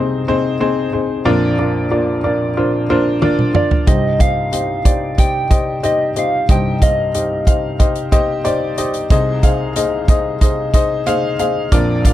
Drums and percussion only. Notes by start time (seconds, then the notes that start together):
3.22 high tom
3.39 mid tom
3.55 mid tom
3.71 floor tom
3.87 kick, closed hi-hat
4.20 kick, closed hi-hat
4.53 closed hi-hat
4.85 kick, closed hi-hat
5.18 kick, closed hi-hat
5.51 kick, closed hi-hat
5.84 closed hi-hat
6.16 closed hi-hat
6.49 kick, closed hi-hat
6.82 kick, closed hi-hat
7.15 closed hi-hat
7.47 kick, closed hi-hat
7.80 kick, closed hi-hat
7.95 closed hi-hat
8.12 kick, closed hi-hat
8.45 closed hi-hat
8.78 closed hi-hat
8.94 closed hi-hat
9.10 kick, closed hi-hat
9.43 kick, closed hi-hat
9.76 closed hi-hat
10.08 kick, closed hi-hat
10.41 kick, closed hi-hat
10.74 kick, closed hi-hat
11.06 closed hi-hat
11.39 closed hi-hat
11.72 kick, closed hi-hat
12.05 kick, closed hi-hat